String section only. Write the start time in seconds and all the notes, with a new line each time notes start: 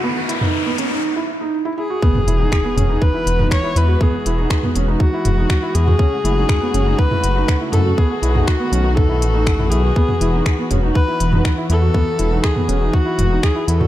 Already playing: A3 F#4
0.05 D#3 B3
2.03 E3 G#3 B3 F#4
6.00 C#3 A3
7.98 D#3 B3
9.97 E3 F#3